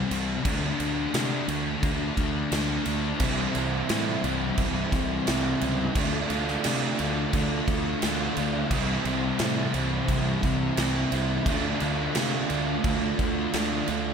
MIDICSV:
0, 0, Header, 1, 6, 480
1, 0, Start_track
1, 0, Tempo, 688863
1, 318, Time_signature, 4, 2, 24, 8
1, 9851, End_track
2, 0, Start_track
2, 0, Title_t, "Overdriven electric guitar"
2, 0, Program_c, 0, 29
2, 2237, Note_on_c, 0, 52, 93
2, 2251, Note_on_c, 0, 64, 93
2, 2466, Note_off_c, 0, 64, 0
2, 2469, Note_on_c, 0, 64, 72
2, 2707, Note_off_c, 0, 52, 0
2, 2710, Note_on_c, 0, 52, 79
2, 2728, Note_off_c, 0, 64, 0
2, 2731, Note_on_c, 0, 64, 102
2, 2949, Note_off_c, 0, 64, 0
2, 2952, Note_on_c, 0, 64, 75
2, 3667, Note_off_c, 0, 52, 0
2, 3670, Note_on_c, 0, 52, 73
2, 3688, Note_off_c, 0, 64, 0
2, 3691, Note_on_c, 0, 64, 80
2, 3908, Note_off_c, 0, 64, 0
2, 3911, Note_on_c, 0, 64, 82
2, 4149, Note_off_c, 0, 52, 0
2, 4171, Note_off_c, 0, 64, 0
2, 4174, Note_on_c, 0, 65, 90
2, 4380, Note_off_c, 0, 65, 0
2, 4388, Note_on_c, 0, 65, 76
2, 4642, Note_off_c, 0, 65, 0
2, 4651, Note_on_c, 0, 65, 96
2, 4858, Note_off_c, 0, 65, 0
2, 4866, Note_on_c, 0, 65, 72
2, 5599, Note_off_c, 0, 65, 0
2, 5607, Note_on_c, 0, 65, 84
2, 5812, Note_off_c, 0, 65, 0
2, 5820, Note_on_c, 0, 65, 74
2, 6052, Note_off_c, 0, 65, 0
2, 6071, Note_on_c, 0, 52, 98
2, 6089, Note_on_c, 0, 64, 100
2, 6301, Note_off_c, 0, 64, 0
2, 6304, Note_on_c, 0, 64, 70
2, 6541, Note_off_c, 0, 52, 0
2, 6544, Note_on_c, 0, 52, 91
2, 6565, Note_off_c, 0, 64, 0
2, 6568, Note_on_c, 0, 64, 91
2, 6781, Note_off_c, 0, 64, 0
2, 6784, Note_on_c, 0, 64, 80
2, 7503, Note_off_c, 0, 52, 0
2, 7506, Note_on_c, 0, 52, 75
2, 7526, Note_off_c, 0, 64, 0
2, 7528, Note_on_c, 0, 64, 78
2, 7743, Note_off_c, 0, 64, 0
2, 7745, Note_on_c, 0, 64, 88
2, 7983, Note_off_c, 0, 52, 0
2, 8004, Note_off_c, 0, 64, 0
2, 8006, Note_on_c, 0, 65, 101
2, 8224, Note_off_c, 0, 65, 0
2, 8232, Note_on_c, 0, 65, 72
2, 8484, Note_off_c, 0, 65, 0
2, 8492, Note_on_c, 0, 65, 97
2, 8696, Note_off_c, 0, 65, 0
2, 8705, Note_on_c, 0, 65, 82
2, 9443, Note_off_c, 0, 65, 0
2, 9452, Note_on_c, 0, 65, 79
2, 9665, Note_off_c, 0, 65, 0
2, 9673, Note_on_c, 0, 65, 73
2, 9851, Note_off_c, 0, 65, 0
2, 9851, End_track
3, 0, Start_track
3, 0, Title_t, "Distorted electric guitar"
3, 0, Program_c, 1, 30
3, 0, Note_on_c, 1, 48, 102
3, 0, Note_on_c, 1, 52, 102
3, 0, Note_on_c, 1, 55, 101
3, 0, Note_on_c, 1, 60, 101
3, 0, Note_on_c, 1, 64, 106
3, 299, Note_off_c, 1, 48, 0
3, 305, Note_off_c, 1, 55, 0
3, 306, Note_off_c, 1, 52, 0
3, 308, Note_off_c, 1, 60, 0
3, 326, Note_off_c, 1, 64, 0
3, 328, Note_on_c, 1, 65, 99
3, 2229, Note_off_c, 1, 65, 0
3, 9851, End_track
4, 0, Start_track
4, 0, Title_t, "Distorted electric guitar"
4, 0, Program_c, 2, 30
4, 0, Note_on_c, 2, 48, 69
4, 0, Note_on_c, 2, 55, 90
4, 64, Note_on_c, 2, 60, 66
4, 78, Note_off_c, 2, 55, 0
4, 86, Note_on_c, 2, 55, 47
4, 297, Note_off_c, 2, 60, 0
4, 300, Note_off_c, 2, 48, 0
4, 304, Note_on_c, 2, 50, 92
4, 308, Note_off_c, 2, 55, 0
4, 318, Note_on_c, 2, 57, 104
4, 327, Note_on_c, 2, 62, 107
4, 546, Note_off_c, 2, 62, 0
4, 554, Note_on_c, 2, 62, 76
4, 566, Note_off_c, 2, 57, 0
4, 575, Note_on_c, 2, 57, 59
4, 780, Note_off_c, 2, 50, 0
4, 788, Note_on_c, 2, 50, 73
4, 794, Note_off_c, 2, 57, 0
4, 802, Note_off_c, 2, 62, 0
4, 802, Note_on_c, 2, 57, 68
4, 811, Note_on_c, 2, 62, 87
4, 1025, Note_off_c, 2, 62, 0
4, 1033, Note_on_c, 2, 62, 83
4, 1045, Note_off_c, 2, 57, 0
4, 1054, Note_on_c, 2, 57, 64
4, 1262, Note_off_c, 2, 50, 0
4, 1270, Note_on_c, 2, 50, 94
4, 1274, Note_off_c, 2, 57, 0
4, 1282, Note_on_c, 2, 57, 94
4, 1283, Note_off_c, 2, 62, 0
4, 1292, Note_on_c, 2, 62, 117
4, 1502, Note_off_c, 2, 62, 0
4, 1510, Note_on_c, 2, 62, 85
4, 1524, Note_off_c, 2, 57, 0
4, 1532, Note_on_c, 2, 57, 64
4, 1744, Note_off_c, 2, 50, 0
4, 1752, Note_on_c, 2, 50, 71
4, 1753, Note_off_c, 2, 57, 0
4, 1762, Note_on_c, 2, 57, 71
4, 1763, Note_off_c, 2, 62, 0
4, 1771, Note_on_c, 2, 62, 90
4, 1982, Note_off_c, 2, 62, 0
4, 1990, Note_on_c, 2, 62, 68
4, 2003, Note_off_c, 2, 57, 0
4, 2011, Note_on_c, 2, 57, 54
4, 2220, Note_off_c, 2, 50, 0
4, 2220, Note_off_c, 2, 62, 0
4, 2230, Note_off_c, 2, 57, 0
4, 2233, Note_on_c, 2, 48, 113
4, 2245, Note_on_c, 2, 55, 98
4, 2256, Note_on_c, 2, 60, 102
4, 2465, Note_off_c, 2, 60, 0
4, 2473, Note_on_c, 2, 60, 78
4, 2484, Note_off_c, 2, 55, 0
4, 2492, Note_on_c, 2, 55, 64
4, 2700, Note_off_c, 2, 48, 0
4, 2708, Note_on_c, 2, 48, 67
4, 2711, Note_off_c, 2, 55, 0
4, 2719, Note_on_c, 2, 55, 74
4, 2720, Note_off_c, 2, 60, 0
4, 2728, Note_on_c, 2, 60, 79
4, 2943, Note_off_c, 2, 60, 0
4, 2952, Note_on_c, 2, 60, 71
4, 2960, Note_off_c, 2, 55, 0
4, 2969, Note_on_c, 2, 55, 60
4, 3180, Note_off_c, 2, 48, 0
4, 3188, Note_on_c, 2, 48, 105
4, 3193, Note_off_c, 2, 55, 0
4, 3202, Note_on_c, 2, 55, 114
4, 3204, Note_off_c, 2, 60, 0
4, 3212, Note_on_c, 2, 60, 113
4, 3425, Note_off_c, 2, 60, 0
4, 3433, Note_on_c, 2, 60, 84
4, 3442, Note_off_c, 2, 55, 0
4, 3450, Note_on_c, 2, 55, 62
4, 3662, Note_off_c, 2, 48, 0
4, 3670, Note_on_c, 2, 48, 74
4, 3671, Note_off_c, 2, 55, 0
4, 3679, Note_on_c, 2, 55, 76
4, 3681, Note_off_c, 2, 60, 0
4, 3690, Note_on_c, 2, 60, 82
4, 3898, Note_off_c, 2, 60, 0
4, 3907, Note_on_c, 2, 60, 61
4, 3920, Note_off_c, 2, 55, 0
4, 3928, Note_on_c, 2, 55, 55
4, 4136, Note_off_c, 2, 60, 0
4, 4138, Note_off_c, 2, 48, 0
4, 4147, Note_off_c, 2, 55, 0
4, 4149, Note_on_c, 2, 50, 117
4, 4160, Note_on_c, 2, 57, 106
4, 4168, Note_on_c, 2, 62, 99
4, 4379, Note_off_c, 2, 62, 0
4, 4388, Note_on_c, 2, 62, 84
4, 4403, Note_off_c, 2, 57, 0
4, 4411, Note_on_c, 2, 57, 69
4, 4626, Note_off_c, 2, 50, 0
4, 4634, Note_on_c, 2, 50, 73
4, 4638, Note_off_c, 2, 57, 0
4, 4645, Note_off_c, 2, 62, 0
4, 4646, Note_on_c, 2, 57, 81
4, 4653, Note_on_c, 2, 62, 79
4, 4866, Note_off_c, 2, 62, 0
4, 4874, Note_on_c, 2, 62, 81
4, 4890, Note_off_c, 2, 57, 0
4, 4898, Note_on_c, 2, 57, 65
4, 5106, Note_off_c, 2, 50, 0
4, 5114, Note_on_c, 2, 50, 104
4, 5117, Note_off_c, 2, 57, 0
4, 5126, Note_off_c, 2, 62, 0
4, 5126, Note_on_c, 2, 57, 97
4, 5135, Note_on_c, 2, 62, 115
4, 5341, Note_off_c, 2, 62, 0
4, 5349, Note_on_c, 2, 62, 76
4, 5364, Note_off_c, 2, 57, 0
4, 5372, Note_on_c, 2, 57, 58
4, 5579, Note_off_c, 2, 50, 0
4, 5588, Note_on_c, 2, 50, 74
4, 5593, Note_off_c, 2, 57, 0
4, 5601, Note_on_c, 2, 57, 72
4, 5602, Note_off_c, 2, 62, 0
4, 5610, Note_on_c, 2, 62, 78
4, 5822, Note_off_c, 2, 62, 0
4, 5830, Note_on_c, 2, 62, 56
4, 5845, Note_off_c, 2, 57, 0
4, 5853, Note_on_c, 2, 57, 53
4, 6055, Note_off_c, 2, 50, 0
4, 6057, Note_off_c, 2, 62, 0
4, 6068, Note_off_c, 2, 57, 0
4, 6072, Note_on_c, 2, 48, 101
4, 6081, Note_on_c, 2, 55, 107
4, 6089, Note_on_c, 2, 60, 122
4, 6305, Note_off_c, 2, 60, 0
4, 6314, Note_on_c, 2, 60, 83
4, 6326, Note_off_c, 2, 55, 0
4, 6334, Note_on_c, 2, 55, 70
4, 6537, Note_off_c, 2, 48, 0
4, 6545, Note_on_c, 2, 48, 73
4, 6548, Note_off_c, 2, 55, 0
4, 6554, Note_off_c, 2, 60, 0
4, 6556, Note_on_c, 2, 55, 72
4, 6563, Note_on_c, 2, 60, 77
4, 6777, Note_off_c, 2, 60, 0
4, 6786, Note_on_c, 2, 60, 74
4, 6800, Note_off_c, 2, 55, 0
4, 6808, Note_on_c, 2, 55, 69
4, 7016, Note_off_c, 2, 48, 0
4, 7024, Note_on_c, 2, 48, 100
4, 7026, Note_off_c, 2, 55, 0
4, 7034, Note_on_c, 2, 55, 104
4, 7037, Note_off_c, 2, 60, 0
4, 7045, Note_on_c, 2, 60, 118
4, 7253, Note_off_c, 2, 60, 0
4, 7262, Note_on_c, 2, 60, 74
4, 7276, Note_off_c, 2, 55, 0
4, 7284, Note_on_c, 2, 55, 57
4, 7496, Note_off_c, 2, 48, 0
4, 7504, Note_on_c, 2, 48, 85
4, 7505, Note_off_c, 2, 55, 0
4, 7513, Note_on_c, 2, 55, 83
4, 7515, Note_off_c, 2, 60, 0
4, 7523, Note_on_c, 2, 60, 84
4, 7738, Note_off_c, 2, 60, 0
4, 7746, Note_on_c, 2, 60, 70
4, 7758, Note_off_c, 2, 55, 0
4, 7767, Note_on_c, 2, 55, 52
4, 7974, Note_off_c, 2, 48, 0
4, 7975, Note_off_c, 2, 60, 0
4, 7985, Note_off_c, 2, 55, 0
4, 7985, Note_on_c, 2, 50, 110
4, 7999, Note_on_c, 2, 57, 110
4, 8008, Note_on_c, 2, 62, 104
4, 8215, Note_off_c, 2, 62, 0
4, 8224, Note_on_c, 2, 62, 90
4, 8237, Note_off_c, 2, 57, 0
4, 8245, Note_on_c, 2, 57, 65
4, 8453, Note_off_c, 2, 50, 0
4, 8462, Note_on_c, 2, 50, 76
4, 8467, Note_off_c, 2, 57, 0
4, 8475, Note_on_c, 2, 57, 81
4, 8477, Note_off_c, 2, 62, 0
4, 8485, Note_on_c, 2, 62, 85
4, 8701, Note_off_c, 2, 62, 0
4, 8709, Note_on_c, 2, 62, 82
4, 8720, Note_off_c, 2, 57, 0
4, 8729, Note_on_c, 2, 57, 61
4, 8940, Note_off_c, 2, 50, 0
4, 8948, Note_on_c, 2, 50, 101
4, 8952, Note_off_c, 2, 57, 0
4, 8961, Note_off_c, 2, 62, 0
4, 8961, Note_on_c, 2, 57, 95
4, 8969, Note_on_c, 2, 62, 104
4, 9186, Note_off_c, 2, 62, 0
4, 9194, Note_on_c, 2, 62, 79
4, 9206, Note_off_c, 2, 57, 0
4, 9214, Note_on_c, 2, 57, 58
4, 9422, Note_off_c, 2, 50, 0
4, 9431, Note_on_c, 2, 50, 84
4, 9435, Note_off_c, 2, 57, 0
4, 9444, Note_on_c, 2, 57, 74
4, 9447, Note_off_c, 2, 62, 0
4, 9455, Note_on_c, 2, 62, 83
4, 9668, Note_off_c, 2, 62, 0
4, 9677, Note_on_c, 2, 62, 72
4, 9689, Note_off_c, 2, 57, 0
4, 9697, Note_on_c, 2, 57, 47
4, 9851, Note_off_c, 2, 50, 0
4, 9851, Note_off_c, 2, 57, 0
4, 9851, Note_off_c, 2, 62, 0
4, 9851, End_track
5, 0, Start_track
5, 0, Title_t, "Fingered electric bass"
5, 0, Program_c, 3, 33
5, 76, Note_on_c, 3, 36, 100
5, 255, Note_off_c, 3, 36, 0
5, 317, Note_on_c, 3, 38, 103
5, 496, Note_off_c, 3, 38, 0
5, 557, Note_on_c, 3, 38, 92
5, 736, Note_off_c, 3, 38, 0
5, 793, Note_on_c, 3, 48, 90
5, 973, Note_off_c, 3, 48, 0
5, 1032, Note_on_c, 3, 38, 98
5, 1213, Note_off_c, 3, 38, 0
5, 1274, Note_on_c, 3, 38, 98
5, 1454, Note_off_c, 3, 38, 0
5, 1517, Note_on_c, 3, 38, 95
5, 1696, Note_off_c, 3, 38, 0
5, 1754, Note_on_c, 3, 38, 90
5, 1934, Note_off_c, 3, 38, 0
5, 1995, Note_on_c, 3, 38, 81
5, 2174, Note_off_c, 3, 38, 0
5, 2232, Note_on_c, 3, 36, 91
5, 2413, Note_off_c, 3, 36, 0
5, 2475, Note_on_c, 3, 36, 91
5, 2654, Note_off_c, 3, 36, 0
5, 2716, Note_on_c, 3, 45, 95
5, 2895, Note_off_c, 3, 45, 0
5, 2953, Note_on_c, 3, 36, 98
5, 3133, Note_off_c, 3, 36, 0
5, 3191, Note_on_c, 3, 36, 100
5, 3372, Note_off_c, 3, 36, 0
5, 3430, Note_on_c, 3, 36, 88
5, 3610, Note_off_c, 3, 36, 0
5, 3679, Note_on_c, 3, 36, 84
5, 3856, Note_off_c, 3, 36, 0
5, 3917, Note_on_c, 3, 37, 91
5, 4095, Note_off_c, 3, 37, 0
5, 4150, Note_on_c, 3, 38, 103
5, 4330, Note_off_c, 3, 38, 0
5, 4391, Note_on_c, 3, 38, 92
5, 4571, Note_off_c, 3, 38, 0
5, 4636, Note_on_c, 3, 48, 97
5, 4814, Note_off_c, 3, 48, 0
5, 4875, Note_on_c, 3, 38, 85
5, 5053, Note_off_c, 3, 38, 0
5, 5110, Note_on_c, 3, 38, 95
5, 5290, Note_off_c, 3, 38, 0
5, 5349, Note_on_c, 3, 38, 99
5, 5529, Note_off_c, 3, 38, 0
5, 5594, Note_on_c, 3, 38, 87
5, 5772, Note_off_c, 3, 38, 0
5, 5833, Note_on_c, 3, 38, 98
5, 6011, Note_off_c, 3, 38, 0
5, 6065, Note_on_c, 3, 36, 105
5, 6246, Note_off_c, 3, 36, 0
5, 6303, Note_on_c, 3, 36, 102
5, 6485, Note_off_c, 3, 36, 0
5, 6547, Note_on_c, 3, 45, 105
5, 6727, Note_off_c, 3, 45, 0
5, 6788, Note_on_c, 3, 36, 93
5, 6968, Note_off_c, 3, 36, 0
5, 7030, Note_on_c, 3, 36, 101
5, 7209, Note_off_c, 3, 36, 0
5, 7270, Note_on_c, 3, 36, 105
5, 7449, Note_off_c, 3, 36, 0
5, 7509, Note_on_c, 3, 36, 88
5, 7688, Note_off_c, 3, 36, 0
5, 7750, Note_on_c, 3, 36, 96
5, 7929, Note_off_c, 3, 36, 0
5, 7985, Note_on_c, 3, 38, 104
5, 8167, Note_off_c, 3, 38, 0
5, 8233, Note_on_c, 3, 38, 94
5, 8412, Note_off_c, 3, 38, 0
5, 8474, Note_on_c, 3, 48, 89
5, 8653, Note_off_c, 3, 48, 0
5, 8713, Note_on_c, 3, 38, 85
5, 8892, Note_off_c, 3, 38, 0
5, 8949, Note_on_c, 3, 38, 96
5, 9130, Note_off_c, 3, 38, 0
5, 9190, Note_on_c, 3, 38, 106
5, 9371, Note_off_c, 3, 38, 0
5, 9432, Note_on_c, 3, 38, 86
5, 9613, Note_off_c, 3, 38, 0
5, 9674, Note_on_c, 3, 38, 91
5, 9851, Note_off_c, 3, 38, 0
5, 9851, End_track
6, 0, Start_track
6, 0, Title_t, "Drums"
6, 78, Note_on_c, 9, 49, 74
6, 148, Note_off_c, 9, 49, 0
6, 314, Note_on_c, 9, 36, 116
6, 315, Note_on_c, 9, 49, 87
6, 384, Note_off_c, 9, 36, 0
6, 385, Note_off_c, 9, 49, 0
6, 556, Note_on_c, 9, 49, 64
6, 626, Note_off_c, 9, 49, 0
6, 795, Note_on_c, 9, 49, 93
6, 800, Note_on_c, 9, 38, 127
6, 864, Note_off_c, 9, 49, 0
6, 870, Note_off_c, 9, 38, 0
6, 1035, Note_on_c, 9, 49, 69
6, 1104, Note_off_c, 9, 49, 0
6, 1275, Note_on_c, 9, 36, 110
6, 1275, Note_on_c, 9, 49, 74
6, 1344, Note_off_c, 9, 36, 0
6, 1345, Note_off_c, 9, 49, 0
6, 1514, Note_on_c, 9, 36, 93
6, 1516, Note_on_c, 9, 49, 61
6, 1584, Note_off_c, 9, 36, 0
6, 1586, Note_off_c, 9, 49, 0
6, 1755, Note_on_c, 9, 49, 80
6, 1760, Note_on_c, 9, 38, 115
6, 1824, Note_off_c, 9, 49, 0
6, 1830, Note_off_c, 9, 38, 0
6, 1990, Note_on_c, 9, 49, 63
6, 2059, Note_off_c, 9, 49, 0
6, 2228, Note_on_c, 9, 49, 86
6, 2231, Note_on_c, 9, 36, 111
6, 2298, Note_off_c, 9, 49, 0
6, 2301, Note_off_c, 9, 36, 0
6, 2472, Note_on_c, 9, 49, 62
6, 2542, Note_off_c, 9, 49, 0
6, 2712, Note_on_c, 9, 49, 86
6, 2717, Note_on_c, 9, 38, 115
6, 2782, Note_off_c, 9, 49, 0
6, 2787, Note_off_c, 9, 38, 0
6, 2954, Note_on_c, 9, 49, 59
6, 3024, Note_off_c, 9, 49, 0
6, 3189, Note_on_c, 9, 49, 80
6, 3191, Note_on_c, 9, 36, 103
6, 3259, Note_off_c, 9, 49, 0
6, 3260, Note_off_c, 9, 36, 0
6, 3430, Note_on_c, 9, 36, 88
6, 3433, Note_on_c, 9, 49, 67
6, 3438, Note_on_c, 9, 38, 31
6, 3500, Note_off_c, 9, 36, 0
6, 3502, Note_off_c, 9, 49, 0
6, 3508, Note_off_c, 9, 38, 0
6, 3672, Note_on_c, 9, 49, 81
6, 3678, Note_on_c, 9, 38, 123
6, 3742, Note_off_c, 9, 49, 0
6, 3747, Note_off_c, 9, 38, 0
6, 3912, Note_on_c, 9, 49, 64
6, 3982, Note_off_c, 9, 49, 0
6, 4149, Note_on_c, 9, 36, 120
6, 4149, Note_on_c, 9, 49, 90
6, 4219, Note_off_c, 9, 36, 0
6, 4219, Note_off_c, 9, 49, 0
6, 4390, Note_on_c, 9, 49, 62
6, 4459, Note_off_c, 9, 49, 0
6, 4514, Note_on_c, 9, 38, 38
6, 4583, Note_off_c, 9, 38, 0
6, 4627, Note_on_c, 9, 49, 102
6, 4632, Note_on_c, 9, 38, 106
6, 4696, Note_off_c, 9, 49, 0
6, 4702, Note_off_c, 9, 38, 0
6, 4869, Note_on_c, 9, 49, 65
6, 4939, Note_off_c, 9, 49, 0
6, 5109, Note_on_c, 9, 36, 106
6, 5110, Note_on_c, 9, 49, 84
6, 5179, Note_off_c, 9, 36, 0
6, 5180, Note_off_c, 9, 49, 0
6, 5349, Note_on_c, 9, 36, 95
6, 5350, Note_on_c, 9, 49, 73
6, 5419, Note_off_c, 9, 36, 0
6, 5420, Note_off_c, 9, 49, 0
6, 5589, Note_on_c, 9, 49, 84
6, 5594, Note_on_c, 9, 38, 114
6, 5658, Note_off_c, 9, 49, 0
6, 5664, Note_off_c, 9, 38, 0
6, 5830, Note_on_c, 9, 49, 65
6, 5900, Note_off_c, 9, 49, 0
6, 6068, Note_on_c, 9, 36, 105
6, 6068, Note_on_c, 9, 49, 84
6, 6138, Note_off_c, 9, 36, 0
6, 6138, Note_off_c, 9, 49, 0
6, 6308, Note_on_c, 9, 49, 57
6, 6378, Note_off_c, 9, 49, 0
6, 6543, Note_on_c, 9, 49, 81
6, 6548, Note_on_c, 9, 38, 127
6, 6612, Note_off_c, 9, 49, 0
6, 6618, Note_off_c, 9, 38, 0
6, 6786, Note_on_c, 9, 49, 61
6, 6856, Note_off_c, 9, 49, 0
6, 7027, Note_on_c, 9, 36, 119
6, 7029, Note_on_c, 9, 49, 83
6, 7097, Note_off_c, 9, 36, 0
6, 7099, Note_off_c, 9, 49, 0
6, 7268, Note_on_c, 9, 36, 91
6, 7269, Note_on_c, 9, 49, 62
6, 7275, Note_on_c, 9, 38, 34
6, 7338, Note_off_c, 9, 36, 0
6, 7339, Note_off_c, 9, 49, 0
6, 7344, Note_off_c, 9, 38, 0
6, 7506, Note_on_c, 9, 49, 87
6, 7512, Note_on_c, 9, 38, 116
6, 7576, Note_off_c, 9, 49, 0
6, 7582, Note_off_c, 9, 38, 0
6, 7748, Note_on_c, 9, 49, 68
6, 7818, Note_off_c, 9, 49, 0
6, 7985, Note_on_c, 9, 36, 119
6, 7987, Note_on_c, 9, 49, 87
6, 8055, Note_off_c, 9, 36, 0
6, 8056, Note_off_c, 9, 49, 0
6, 8224, Note_on_c, 9, 49, 62
6, 8294, Note_off_c, 9, 49, 0
6, 8465, Note_on_c, 9, 49, 95
6, 8471, Note_on_c, 9, 38, 119
6, 8535, Note_off_c, 9, 49, 0
6, 8540, Note_off_c, 9, 38, 0
6, 8708, Note_on_c, 9, 49, 62
6, 8778, Note_off_c, 9, 49, 0
6, 8949, Note_on_c, 9, 36, 119
6, 8949, Note_on_c, 9, 49, 82
6, 9018, Note_off_c, 9, 36, 0
6, 9019, Note_off_c, 9, 49, 0
6, 9191, Note_on_c, 9, 36, 93
6, 9192, Note_on_c, 9, 49, 61
6, 9261, Note_off_c, 9, 36, 0
6, 9262, Note_off_c, 9, 49, 0
6, 9431, Note_on_c, 9, 49, 86
6, 9437, Note_on_c, 9, 38, 122
6, 9501, Note_off_c, 9, 49, 0
6, 9507, Note_off_c, 9, 38, 0
6, 9669, Note_on_c, 9, 49, 63
6, 9738, Note_off_c, 9, 49, 0
6, 9851, End_track
0, 0, End_of_file